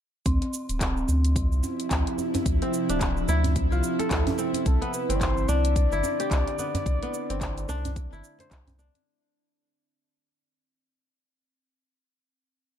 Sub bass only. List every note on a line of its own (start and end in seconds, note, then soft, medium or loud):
0.26 0.39 D2 loud
0.69 1.05 D1 medium
1.08 1.47 D2 medium
1.52 1.61 C2 medium
1.91 2.04 D2 medium
2.46 2.59 D2 medium
2.89 3.25 D1 medium
3.28 3.67 D2 medium
3.72 3.81 C2 medium
4.11 4.24 D2 medium
4.66 4.79 C2 loud
5.09 5.45 G1 medium
5.48 5.87 C2 medium
5.92 6.02 G1 medium
6.31 6.44 C2 medium
6.86 6.99 C2 medium
7.30 7.65 G1 medium
7.69 8.08 C2 medium
8.12 8.22 G1 loud
8.51 8.90 C2 loud